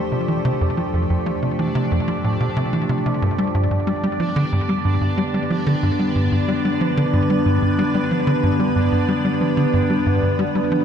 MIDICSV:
0, 0, Header, 1, 4, 480
1, 0, Start_track
1, 0, Tempo, 652174
1, 448, Time_signature, 4, 2, 24, 8
1, 7983, End_track
2, 0, Start_track
2, 0, Title_t, "Synth texture"
2, 0, Program_c, 0, 99
2, 0, Note_on_c, 0, 62, 81
2, 0, Note_on_c, 0, 74, 81
2, 7983, Note_off_c, 0, 62, 0
2, 7983, Note_off_c, 0, 74, 0
2, 7983, End_track
3, 0, Start_track
3, 0, Title_t, "Ambient pad"
3, 0, Program_c, 1, 92
3, 0, Note_on_c, 1, 53, 85
3, 0, Note_on_c, 1, 57, 71
3, 0, Note_on_c, 1, 67, 86
3, 0, Note_on_c, 1, 72, 93
3, 2368, Note_off_c, 1, 53, 0
3, 2368, Note_off_c, 1, 57, 0
3, 2368, Note_off_c, 1, 72, 0
3, 2369, Note_on_c, 1, 50, 91
3, 2501, Note_on_c, 1, 59, 77
3, 3519, Note_on_c, 1, 71, 80
3, 7983, Note_off_c, 1, 50, 0
3, 7983, Note_off_c, 1, 59, 0
3, 7983, Note_off_c, 1, 67, 0
3, 7983, Note_off_c, 1, 71, 0
3, 7983, End_track
4, 0, Start_track
4, 0, Title_t, "Analog synth bass"
4, 0, Program_c, 2, 38
4, 87, Note_on_c, 2, 48, 72
4, 151, Note_off_c, 2, 48, 0
4, 207, Note_on_c, 2, 52, 77
4, 303, Note_off_c, 2, 52, 0
4, 329, Note_on_c, 2, 48, 104
4, 392, Note_off_c, 2, 48, 0
4, 448, Note_on_c, 2, 41, 84
4, 512, Note_off_c, 2, 41, 0
4, 568, Note_on_c, 2, 53, 75
4, 663, Note_off_c, 2, 53, 0
4, 688, Note_on_c, 2, 41, 73
4, 783, Note_off_c, 2, 41, 0
4, 808, Note_on_c, 2, 41, 73
4, 872, Note_off_c, 2, 41, 0
4, 928, Note_on_c, 2, 53, 78
4, 966, Note_off_c, 2, 53, 0
4, 1048, Note_on_c, 2, 48, 73
4, 1112, Note_off_c, 2, 48, 0
4, 1169, Note_on_c, 2, 52, 74
4, 1264, Note_off_c, 2, 52, 0
4, 1288, Note_on_c, 2, 48, 96
4, 1351, Note_off_c, 2, 48, 0
4, 1409, Note_on_c, 2, 41, 83
4, 1472, Note_off_c, 2, 41, 0
4, 1529, Note_on_c, 2, 53, 70
4, 1624, Note_off_c, 2, 53, 0
4, 1649, Note_on_c, 2, 45, 74
4, 1744, Note_off_c, 2, 45, 0
4, 1769, Note_on_c, 2, 47, 75
4, 1832, Note_off_c, 2, 47, 0
4, 1887, Note_on_c, 2, 48, 86
4, 1951, Note_off_c, 2, 48, 0
4, 2008, Note_on_c, 2, 52, 73
4, 2103, Note_off_c, 2, 52, 0
4, 2128, Note_on_c, 2, 48, 78
4, 2191, Note_off_c, 2, 48, 0
4, 2250, Note_on_c, 2, 48, 74
4, 2345, Note_off_c, 2, 48, 0
4, 2370, Note_on_c, 2, 43, 84
4, 2432, Note_off_c, 2, 43, 0
4, 2490, Note_on_c, 2, 55, 74
4, 2584, Note_off_c, 2, 55, 0
4, 2609, Note_on_c, 2, 43, 78
4, 2704, Note_off_c, 2, 43, 0
4, 2729, Note_on_c, 2, 43, 72
4, 2792, Note_off_c, 2, 43, 0
4, 2848, Note_on_c, 2, 55, 77
4, 2886, Note_off_c, 2, 55, 0
4, 2969, Note_on_c, 2, 55, 78
4, 3007, Note_off_c, 2, 55, 0
4, 3089, Note_on_c, 2, 53, 74
4, 3184, Note_off_c, 2, 53, 0
4, 3208, Note_on_c, 2, 50, 98
4, 3272, Note_off_c, 2, 50, 0
4, 3330, Note_on_c, 2, 43, 82
4, 3393, Note_off_c, 2, 43, 0
4, 3450, Note_on_c, 2, 55, 74
4, 3544, Note_off_c, 2, 55, 0
4, 3568, Note_on_c, 2, 43, 76
4, 3664, Note_off_c, 2, 43, 0
4, 3689, Note_on_c, 2, 43, 71
4, 3752, Note_off_c, 2, 43, 0
4, 3808, Note_on_c, 2, 55, 85
4, 3846, Note_off_c, 2, 55, 0
4, 3931, Note_on_c, 2, 55, 74
4, 3967, Note_off_c, 2, 55, 0
4, 4050, Note_on_c, 2, 53, 78
4, 4144, Note_off_c, 2, 53, 0
4, 4169, Note_on_c, 2, 50, 96
4, 4232, Note_off_c, 2, 50, 0
4, 4289, Note_on_c, 2, 43, 79
4, 4352, Note_off_c, 2, 43, 0
4, 4410, Note_on_c, 2, 55, 73
4, 4505, Note_off_c, 2, 55, 0
4, 4530, Note_on_c, 2, 43, 74
4, 4624, Note_off_c, 2, 43, 0
4, 4650, Note_on_c, 2, 43, 73
4, 4713, Note_off_c, 2, 43, 0
4, 4771, Note_on_c, 2, 55, 78
4, 4808, Note_off_c, 2, 55, 0
4, 4893, Note_on_c, 2, 55, 72
4, 4928, Note_off_c, 2, 55, 0
4, 5011, Note_on_c, 2, 53, 75
4, 5105, Note_off_c, 2, 53, 0
4, 5132, Note_on_c, 2, 50, 99
4, 5193, Note_off_c, 2, 50, 0
4, 5250, Note_on_c, 2, 43, 82
4, 5312, Note_off_c, 2, 43, 0
4, 5370, Note_on_c, 2, 55, 78
4, 5464, Note_off_c, 2, 55, 0
4, 5488, Note_on_c, 2, 43, 80
4, 5583, Note_off_c, 2, 43, 0
4, 5609, Note_on_c, 2, 43, 73
4, 5672, Note_off_c, 2, 43, 0
4, 5729, Note_on_c, 2, 55, 88
4, 5767, Note_off_c, 2, 55, 0
4, 5848, Note_on_c, 2, 55, 74
4, 5886, Note_off_c, 2, 55, 0
4, 5969, Note_on_c, 2, 53, 77
4, 6064, Note_off_c, 2, 53, 0
4, 6086, Note_on_c, 2, 50, 103
4, 6151, Note_off_c, 2, 50, 0
4, 6206, Note_on_c, 2, 43, 81
4, 6271, Note_off_c, 2, 43, 0
4, 6326, Note_on_c, 2, 55, 75
4, 6422, Note_off_c, 2, 55, 0
4, 6446, Note_on_c, 2, 43, 77
4, 6542, Note_off_c, 2, 43, 0
4, 6566, Note_on_c, 2, 43, 76
4, 6631, Note_off_c, 2, 43, 0
4, 6686, Note_on_c, 2, 55, 79
4, 6725, Note_off_c, 2, 55, 0
4, 6805, Note_on_c, 2, 55, 74
4, 6845, Note_off_c, 2, 55, 0
4, 6925, Note_on_c, 2, 53, 74
4, 7022, Note_off_c, 2, 53, 0
4, 7044, Note_on_c, 2, 50, 97
4, 7110, Note_off_c, 2, 50, 0
4, 7164, Note_on_c, 2, 43, 80
4, 7230, Note_off_c, 2, 43, 0
4, 7284, Note_on_c, 2, 55, 73
4, 7381, Note_off_c, 2, 55, 0
4, 7406, Note_on_c, 2, 43, 79
4, 7502, Note_off_c, 2, 43, 0
4, 7527, Note_on_c, 2, 43, 71
4, 7591, Note_off_c, 2, 43, 0
4, 7645, Note_on_c, 2, 55, 88
4, 7685, Note_off_c, 2, 55, 0
4, 7765, Note_on_c, 2, 55, 73
4, 7805, Note_off_c, 2, 55, 0
4, 7886, Note_on_c, 2, 53, 77
4, 7983, Note_off_c, 2, 53, 0
4, 7983, End_track
0, 0, End_of_file